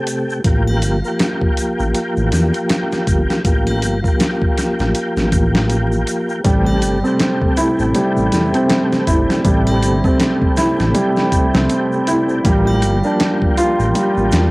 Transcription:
0.00 0.40 C3 medium
0.00 0.41 A3 medium
0.00 0.43 G4 medium
0.07 closed hi-hat medium
0.07 shaker medium
0.30 shaker soft
0.44 0.84 A1 medium
0.44 0.99 F3 medium
0.44 0.99 A#3 medium
0.44 1.00 G4 medium
0.44 kick loud
0.44 closed hi-hat medium
0.44 shaker soft
0.68 triangle medium
0.82 1.02 G1 medium
0.82 closed hi-hat medium
0.82 shaker medium
1.02 3.40 F3 medium
1.02 3.41 A#3 medium
1.02 shaker soft
1.08 3.43 G4 medium
1.19 snare loud
1.19 closed hi-hat medium
1.19 shaker medium
1.41 kick medium
1.57 closed hi-hat medium
1.57 shaker loud
1.79 1.93 A1 medium
1.79 shaker soft
1.95 closed hi-hat medium
1.95 shaker medium
2.17 2.31 A1 loud
2.17 shaker soft
2.32 2.52 E2 medium
2.32 snare soft
2.32 closed hi-hat medium
2.32 shaker medium
2.54 closed hi-hat soft
2.54 shaker soft
2.70 snare loud
2.70 closed hi-hat medium
2.70 shaker medium
2.92 snare soft
2.92 shaker soft
3.07 3.27 G1 medium
3.07 kick medium
3.07 closed hi-hat medium
3.07 shaker medium
3.30 snare soft
3.30 shaker soft
3.44 3.84 A1 loud
3.44 3.99 F3 medium
3.44 3.99 A#3 medium
3.44 4.00 G4 medium
3.44 kick loud
3.44 closed hi-hat medium
3.44 shaker medium
3.67 closed hi-hat soft
3.67 triangle medium
3.82 4.02 G1 medium
3.82 closed hi-hat medium
3.82 shaker medium
4.02 6.40 F3 medium
4.02 6.42 A#3 medium
4.02 kick medium
4.02 shaker soft
4.08 6.43 G4 medium
4.20 snare loud
4.20 closed hi-hat medium
4.20 shaker medium
4.42 kick medium
4.57 snare soft
4.57 closed hi-hat medium
4.57 shaker medium
4.79 4.93 A1 medium
4.79 snare soft
4.79 shaker soft
4.95 closed hi-hat medium
4.95 shaker medium
5.17 6.04 A1 medium
5.17 snare soft
5.17 shaker soft
5.32 kick medium
5.32 closed hi-hat medium
5.32 shaker medium
5.55 snare loud
5.55 shaker soft
5.70 closed hi-hat medium
5.70 shaker soft
5.92 shaker soft
6.07 closed hi-hat medium
6.07 shaker medium
6.29 shaker soft
6.44 6.84 A1 loud
6.44 6.99 C3 medium
6.44 6.66 G3 medium
6.44 6.99 A3 medium
6.44 7.00 G4 medium
6.44 kick loud
6.44 closed hi-hat medium
6.44 shaker medium
6.66 triangle medium
6.82 7.02 G1 medium
6.82 closed hi-hat medium
6.82 shaker loud
7.02 9.40 C3 medium
7.02 9.41 A3 medium
7.02 7.13 C4 medium
7.02 shaker soft
7.07 9.43 G4 medium
7.19 snare loud
7.19 closed hi-hat medium
7.19 shaker soft
7.42 kick medium
7.57 7.78 E4 medium
7.57 closed hi-hat medium
7.57 shaker medium
7.79 7.93 A1 medium
7.79 shaker soft
7.95 8.16 G3 medium
7.95 closed hi-hat medium
7.95 shaker soft
8.17 8.30 A1 loud
8.17 shaker soft
8.32 8.52 E2 medium
8.32 snare soft
8.32 closed hi-hat medium
8.32 shaker medium
8.54 8.63 C4 medium
8.54 closed hi-hat soft
8.54 shaker soft
8.70 snare loud
8.70 closed hi-hat medium
8.70 shaker soft
8.92 snare soft
8.92 shaker soft
9.07 9.27 G1 medium
9.07 9.28 E4 medium
9.07 kick medium
9.07 closed hi-hat medium
9.07 shaker medium
9.30 snare medium
9.30 shaker soft
9.44 9.84 A1 loud
9.44 9.98 C3 medium
9.44 9.66 G3 medium
9.44 9.99 A3 medium
9.44 10.00 G4 medium
9.44 kick loud
9.44 closed hi-hat medium
9.44 shaker soft
9.67 closed hi-hat soft
9.67 triangle medium
9.82 10.02 G1 medium
9.82 closed hi-hat medium
9.82 shaker medium
10.02 12.40 C3 medium
10.02 12.41 A3 medium
10.02 10.13 C4 medium
10.02 kick medium
10.02 shaker soft
10.08 12.43 G4 medium
10.20 snare loud
10.20 closed hi-hat medium
10.20 shaker medium
10.42 kick medium
10.57 10.78 E4 loud
10.57 snare soft
10.57 closed hi-hat medium
10.57 shaker medium
10.79 10.93 A1 medium
10.79 snare soft
10.79 shaker soft
10.95 11.16 G3 medium
10.95 closed hi-hat medium
10.95 shaker soft
11.16 snare soft
11.16 shaker soft
11.32 kick medium
11.32 closed hi-hat medium
11.32 shaker medium
11.54 11.68 C2 medium
11.54 11.63 C4 medium
11.54 snare loud
11.54 shaker soft
11.70 closed hi-hat medium
11.70 shaker soft
11.92 shaker soft
12.07 12.28 E4 medium
12.07 closed hi-hat medium
12.07 shaker medium
12.29 shaker soft
12.44 12.84 A1 loud
12.44 12.98 F3 medium
12.44 12.66 G3 medium
12.44 12.99 A#3 medium
12.44 13.00 G4 medium
12.44 kick loud
12.44 closed hi-hat medium
12.44 shaker soft
12.67 triangle medium
12.82 13.02 G1 medium
12.82 closed hi-hat medium
12.82 shaker medium
13.02 14.51 F3 medium
13.02 14.51 A#3 medium
13.02 13.13 D4 medium
13.02 shaker soft
13.07 14.51 G4 medium
13.20 snare loud
13.20 closed hi-hat medium
13.20 shaker soft
13.42 kick medium
13.57 13.78 F4 loud
13.57 closed hi-hat medium
13.57 shaker medium
13.79 13.93 A1 medium
13.79 shaker soft
13.95 14.16 G3 medium
13.95 closed hi-hat medium
13.95 shaker soft
14.17 14.30 A1 medium
14.17 shaker soft
14.32 14.51 E2 medium
14.32 snare loud
14.32 closed hi-hat medium
14.32 shaker medium

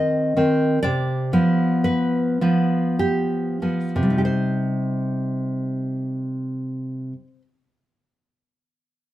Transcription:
0.00 0.35 D#3 soft
0.00 0.36 C4 soft
0.00 0.78 D#5 medium
0.36 0.78 D#3 soft
0.36 0.78 C4 soft
0.83 1.31 C3 medium
0.83 1.81 D5 medium
1.33 2.40 F3 soft
1.33 2.40 B3 medium
1.84 2.95 B4 medium
2.41 3.61 F3 soft
2.41 3.61 B3 soft
2.99 3.59 G4 medium
3.62 4.21 F3 soft
3.62 4.10 B3 soft
3.96 7.12 C3 soft
4.03 7.19 G3 soft
4.10 7.27 D#4 soft
4.18 4.24 G4 soft
4.25 7.42 C5 soft

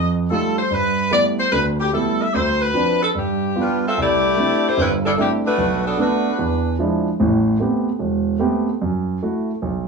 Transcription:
0.00 0.25 F2 medium
0.00 0.12 D#5 loud
0.30 0.59 G3 soft
0.30 0.59 A3 soft
0.30 0.59 D#4 soft
0.30 0.59 F4 medium
0.30 0.55 A4 medium
0.58 0.71 C5 medium
0.70 1.06 G2 medium
0.70 1.13 B4 medium
1.11 1.39 G3 soft
1.11 1.39 A3 soft
1.11 1.39 B3 soft
1.11 1.40 E4 soft
1.11 1.25 D5 medium
1.40 1.52 C5 medium
1.52 1.87 D2 medium
1.52 1.88 D3 medium
1.52 1.64 B4 medium
1.80 1.93 G4 medium
1.93 2.21 G3 soft
1.93 2.21 A3 soft
1.93 2.21 B3 soft
1.93 2.21 E4 medium
1.93 2.18 A4 medium
2.21 2.34 E5 medium
2.34 2.69 D2 medium
2.34 2.60 C5 medium
2.62 3.01 B4 medium
2.74 3.02 F3 soft
2.74 3.02 C4 soft
2.74 3.02 D4 soft
3.03 3.08 A4 medium
3.15 3.50 G2 medium
3.15 3.79 G4 medium
3.55 3.83 G3 soft
3.55 3.83 B3 soft
3.55 3.83 F4 soft
3.60 3.83 G3 medium
3.60 3.82 D4 medium
3.60 3.83 F4 medium
3.60 3.83 B4 medium
3.87 3.98 C4 medium
3.87 3.98 F4 medium
3.87 3.98 A4 medium
3.87 3.98 E5 medium
3.97 4.32 C2 medium
4.02 4.66 A3 medium
4.02 4.65 E4 medium
4.02 4.66 G4 medium
4.02 4.66 D5 loud
4.37 4.64 A3 soft
4.37 4.65 C4 soft
4.37 4.65 D4 soft
4.37 4.65 E4 medium
4.67 4.79 A3 medium
4.67 4.79 E4 medium
4.67 4.79 G4 medium
4.67 4.79 C5 medium
4.77 5.12 G1 medium
4.77 5.12 G2 medium
4.77 4.91 G3 medium
4.77 4.91 C4 medium
4.77 4.91 E4 medium
4.77 4.91 B4 medium
5.06 5.12 G3 medium
5.06 5.12 D4 medium
5.06 5.11 E4 medium
5.06 5.11 A4 medium
5.18 5.31 E3 medium
5.18 5.45 A3 soft
5.18 5.31 A3 medium
5.18 5.45 C4 soft
5.18 5.45 D4 soft
5.18 5.30 D4 medium
5.18 5.46 E4 medium
5.18 5.31 G4 medium
5.45 5.82 A3 medium
5.45 5.82 D4 medium
5.45 5.82 F#4 medium
5.45 5.82 B4 medium
5.58 5.93 B1 medium
5.86 5.99 F#3 medium
5.86 5.99 B3 medium
5.86 5.98 D4 medium
5.86 5.99 A4 medium
5.97 6.26 A3 soft
5.97 6.37 A3 medium
5.97 6.26 B3 soft
5.97 6.26 D4 medium
5.97 6.76 D4 medium
5.97 6.37 F#4 medium
5.97 6.76 B4 medium
6.39 6.74 E2 medium
6.79 7.07 F3 medium
6.79 7.07 G#3 soft
6.79 7.07 D4 soft
6.79 7.07 E4 medium
7.20 7.55 A1 medium
7.20 7.55 A2 medium
7.60 7.88 A3 soft
7.60 7.88 B3 soft
7.60 7.88 C4 soft
7.60 7.88 G4 medium
7.99 8.35 E1 medium
8.39 8.68 A3 medium
8.39 8.68 B3 soft
8.39 8.69 C4 soft
8.39 8.69 G4 medium
8.82 9.17 F#2 medium
9.23 9.50 A3 soft
9.23 9.50 E4 soft
9.23 9.50 F#4 soft
9.62 9.88 B1 soft

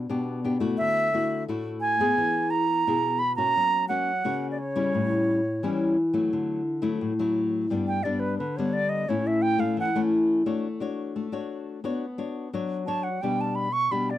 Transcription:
0.09 0.75 B2 medium
0.09 0.39 B3 medium
0.09 0.39 D4 medium
0.09 0.39 G4 medium
0.44 0.56 B3 medium
0.44 0.57 D4 medium
0.44 0.57 G4 medium
0.60 1.07 A3 medium
0.60 1.08 E4 medium
0.60 1.08 F#4 medium
0.78 1.46 D3 medium
0.78 1.44 E5 loud
1.14 1.43 A3 medium
1.14 1.43 E4 medium
1.14 1.43 F#4 medium
1.48 2.14 A2 medium
1.48 1.95 A3 medium
1.48 1.95 E4 medium
1.48 1.95 F#4 medium
1.81 2.52 G#5 loud
2.00 2.64 B3 medium
2.00 2.64 E4 medium
2.00 2.64 G#4 medium
2.18 2.83 E3 medium
2.50 3.21 A#5 loud
2.87 3.53 B2 medium
2.87 3.19 B3 medium
2.87 3.20 E4 medium
2.87 3.20 G#4 medium
3.19 3.35 B5 loud
3.36 3.84 A#3 medium
3.36 3.85 C#4 medium
3.36 3.85 F#4 medium
3.36 3.85 A#5 loud
3.57 4.22 F#3 medium
3.88 4.10 A#3 medium
3.88 4.10 C#4 medium
3.88 4.11 F#4 medium
3.88 4.47 F#5 loud
4.25 4.91 C#3 medium
4.25 4.57 A#3 medium
4.25 4.57 C#4 medium
4.25 4.58 F#4 medium
4.51 4.60 D5 medium
4.59 5.97 C#5 medium
4.76 5.40 G3 medium
4.76 5.40 C#4 medium
4.76 5.40 E4 medium
4.95 5.60 A2 medium
5.63 6.29 E3 medium
5.63 5.96 G3 medium
5.63 5.96 C#4 medium
5.63 5.96 E4 medium
6.14 6.60 F#3 medium
6.14 6.60 A3 medium
6.14 6.61 E4 medium
6.33 6.98 D3 medium
6.82 7.12 F#3 medium
6.82 7.12 A3 medium
6.82 7.12 E4 medium
7.01 7.67 A2 medium
7.19 7.65 F#3 medium
7.19 7.66 A3 medium
7.19 7.66 E4 medium
7.70 8.36 G2 medium
7.70 7.99 G3 soft
7.70 8.00 B3 medium
7.70 8.00 D4 medium
7.88 8.05 G5 medium
8.03 8.37 G3 medium
8.03 8.37 B3 medium
8.03 8.38 D4 medium
8.03 8.21 D5 medium
8.20 8.38 B4 medium
8.38 9.05 D3 medium
8.38 8.58 B4 medium
8.57 9.04 G3 medium
8.57 9.04 B3 medium
8.57 9.04 D4 medium
8.57 8.75 C#5 medium
8.73 8.91 D5 loud
8.89 9.10 D#5 medium
9.08 9.74 A2 medium
9.08 9.55 A3 medium
9.08 9.55 C#4 medium
9.08 9.55 E4 medium
9.08 9.28 C#5 medium
9.27 9.44 E5 medium
9.42 9.61 G5 loud
9.58 9.88 A3 medium
9.58 9.88 C#4 medium
9.58 9.89 E4 medium
9.58 9.77 F5 medium
9.77 10.43 E3 medium
9.77 10.00 F#5 medium
9.95 10.41 A3 medium
9.95 10.41 C#4 medium
9.95 10.41 E4 medium
10.46 11.12 A3 medium
10.46 10.67 D4 medium
10.46 10.67 F#4 medium
10.46 10.67 C#5 medium
10.80 11.27 D4 medium
10.80 11.27 F#4 medium
10.80 11.28 C#5 medium
11.16 11.81 A3 medium
11.32 11.79 D4 medium
11.32 11.79 F#4 medium
11.32 11.79 C#5 medium
11.84 12.50 B3 medium
11.84 12.05 D4 medium
11.84 12.05 F#4 medium
11.84 12.05 C#5 medium
12.18 12.48 D4 medium
12.18 12.48 F#4 soft
12.18 12.48 C#5 medium
12.53 13.19 F#3 medium
12.53 12.82 D4 medium
12.53 12.83 F#4 medium
12.53 12.83 C#5 medium
12.87 13.08 D4 medium
12.87 13.08 F#4 medium
12.87 13.08 C#5 medium
12.87 13.05 A5 medium
13.03 13.23 F#5 medium
13.22 13.88 B2 medium
13.22 13.67 G3 medium
13.22 13.67 D4 medium
13.22 13.67 G4 medium
13.22 13.42 G5 medium
13.41 13.57 A5 medium
13.55 13.74 B5 medium
13.73 13.93 C#6 loud
13.91 14.18 B2 medium
13.91 14.12 G3 medium
13.91 14.12 D4 soft
13.91 14.12 G4 medium
13.91 14.12 B5 medium
14.10 14.18 D5 medium

